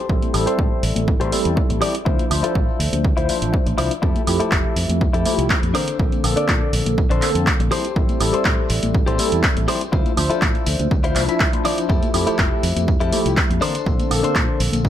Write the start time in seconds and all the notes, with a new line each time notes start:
Already playing: G4 A4 C5
0.09 A1 G3 C4 E4 A4, kick, tambourine
0.22 closed hi-hat, tambourine, high conga
0.33 A1 G3 C4 E4 A4, open hi-hat, tambourine, high woodblock
0.46 G4 A4 C5, closed hi-hat, tambourine
0.58 A2, kick, tambourine, high conga
0.83 A1, open hi-hat, tambourine
0.96 A1, closed hi-hat, tambourine, high conga
1.08 kick
1.20 A1 G3 C4 E4 G4 A4 C5, closed hi-hat
1.32 G3 C4 E4 A4, open hi-hat, tambourine, high conga
1.45 E2, closed hi-hat, tambourine
1.56 muted clean electric guitar stroke, kick, tambourine
1.69 A1, muted clean electric guitar stroke, closed hi-hat, high conga
1.81 G3 C4 E4 G4 A4 C5 D5, open hi-hat, tambourine, low conga, high woodblock
1.95 closed hi-hat, tambourine
2.05 D2 F3 D4 E4 F4 C5, kick, tambourine
2.19 closed hi-hat, tambourine, high conga
2.30 D2 F3 D4 C5 E5, open hi-hat, tambourine, high woodblock
2.43 E4 F4 A4, muted fingered electric bass stroke, closed hi-hat, tambourine
2.55 A1, kick, tambourine, high conga
2.68 tambourine
2.80 D2, open hi-hat, tambourine
2.93 D2, closed hi-hat, tambourine, high conga
3.04 kick, tambourine
3.17 D2 F3 D4 E4 F4 C5, closed hi-hat, tambourine
3.29 F3 D4 C5 E5, open hi-hat, tambourine, high conga
3.42 A1, closed hi-hat, tambourine
3.53 muted clean electric guitar stroke, kick
3.66 A1, muted clean electric guitar stroke, closed hi-hat, tambourine, high conga
3.78 C2 F3 D4 E4 F4 C5 D5, open hi-hat, tambourine, low conga, high woodblock
3.91 closed hi-hat, tambourine
4.02 F2 F3 A3 E4 G4 A4, kick, tambourine
4.16 closed hi-hat, tambourine, high conga
4.27 F2 F3 A3 E4 G4, open hi-hat, tambourine, high woodblock
4.40 E4 G4 A4, muted fingered electric bass stroke, closed hi-hat, tambourine
4.51 F1, kick, clap, tambourine, high conga
4.76 F2, open hi-hat, tambourine
4.89 F2, closed hi-hat, tambourine, high conga
5.01 kick, tambourine
5.13 F2 F3 A3 E4 G4 A4, closed hi-hat
5.25 F3 A3 E4 G4, open hi-hat, tambourine, high conga
5.38 C2, closed hi-hat, tambourine
5.50 muted clean electric guitar stroke, kick, clap, tambourine
5.63 F2, muted clean electric guitar stroke, closed hi-hat, high conga
5.74 D3 A#3 C4 D4 A4 A#4 C5, open hi-hat, tambourine, low conga, high woodblock
5.88 closed hi-hat, tambourine
5.99 A#1 D3 A#3 C4 A4, kick, tambourine
6.12 closed hi-hat, tambourine, high conga
6.23 A#1 D3 A#3 C4 A4, open hi-hat, tambourine, high woodblock
6.36 D4 A4 D5, closed hi-hat, tambourine
6.48 A#2, kick, clap, tambourine, high conga
6.73 A#1, open hi-hat, tambourine
6.86 A#1, closed hi-hat, tambourine, high conga
6.98 kick, tambourine
7.10 A#1 D3 A#3 C4 D4 A4 C5, closed hi-hat
7.22 D3 A#3 C4 A4, clap, open hi-hat, tambourine, high conga
7.35 F2, closed hi-hat, tambourine
7.46 muted clean electric guitar stroke, kick, clap, tambourine
7.60 A#1, muted clean electric guitar stroke, closed hi-hat, high conga
7.71 G3 C4 E4 G4 A4 C5, open hi-hat, tambourine, low conga, high woodblock
7.85 closed hi-hat, tambourine
7.96 A1 G3 C4 E4 A4, kick, tambourine
8.09 closed hi-hat, tambourine, high conga
8.20 A1 G3 C4 E4 A4, open hi-hat, tambourine, high woodblock
8.33 G4 A4 C5, closed hi-hat, tambourine
8.45 A2, kick, clap, tambourine, high conga
8.69 A1, open hi-hat, tambourine
8.83 A1, closed hi-hat, tambourine, high conga
8.95 kick, tambourine
9.06 A1 G3 C4 E4 G4 A4 C5, closed hi-hat
9.18 G3 C4 E4 A4, open hi-hat, tambourine, high conga
9.32 E2, closed hi-hat, tambourine
9.43 muted clean electric guitar stroke, kick, clap, tambourine
9.56 A1, muted clean electric guitar stroke, closed hi-hat, high conga
9.68 G3 C4 E4 G4 A4 C5, open hi-hat, tambourine, low conga, high woodblock
9.81 closed hi-hat, tambourine
9.92 D2 F3 D4 E4 F4 C5, kick, tambourine
10.06 closed hi-hat, tambourine, high conga
10.17 D2 F3 D4 C5 E5, open hi-hat, tambourine, high woodblock
10.30 E4 F4 A4, muted fingered electric bass stroke, closed hi-hat, tambourine
10.42 A1, kick, clap, tambourine, high conga
10.55 closed hi-hat
10.66 D2, open hi-hat, tambourine
10.80 D2, closed hi-hat, tambourine, high conga
10.91 kick, tambourine
11.04 F3 D4 E4 F4 C5, closed hi-hat
11.15 C2 F3 D4 E4 E5, clap, open hi-hat, tambourine, high conga
11.28 F3 D4 E4 E5, closed hi-hat, tambourine
11.40 muted clean electric guitar stroke, kick, clap, tambourine
11.53 F3 D4 E4 C5, muted clean electric guitar stroke, closed hi-hat, high conga
11.65 F3 D4 E4 F4 C5 D5, open hi-hat, tambourine, low conga, high woodblock
11.78 closed hi-hat, tambourine
11.89 F2 A3 E4 G4 A4, kick, tambourine
12.02 closed hi-hat, tambourine, high conga
12.13 F2 F3 A3 E4 G4, open hi-hat, tambourine, high woodblock
12.27 E4 G4 A4, muted fingered electric bass stroke, closed hi-hat, tambourine
12.38 F1, kick, clap, tambourine, high conga
12.63 F2, open hi-hat, tambourine
12.76 F2, closed hi-hat, tambourine, high conga
12.88 kick, tambourine
13.00 F2 F3 A3 E4 G4 A4, closed hi-hat
13.12 F3 A3 E4 G4, open hi-hat, tambourine, high conga
13.26 C2, closed hi-hat, tambourine
13.37 muted clean electric guitar stroke, kick, clap, tambourine
13.50 F2, muted clean electric guitar stroke, closed hi-hat, high conga
13.61 D3 A#3 C4 D4 A4 A#4 C5, open hi-hat, tambourine, low conga, high woodblock
13.75 closed hi-hat, tambourine
13.86 A#1 D3 A#3 C4 A4, kick, tambourine
14.00 closed hi-hat, tambourine, high conga
14.10 A#1 D3 A#3 C4 A4, open hi-hat, tambourine, high woodblock
14.23 D4 A4 C5, closed hi-hat, tambourine
14.35 A#2, kick, clap, tambourine, high conga
14.60 A#1, open hi-hat, tambourine
14.72 A#1, closed hi-hat, tambourine, high conga
14.85 kick, tambourine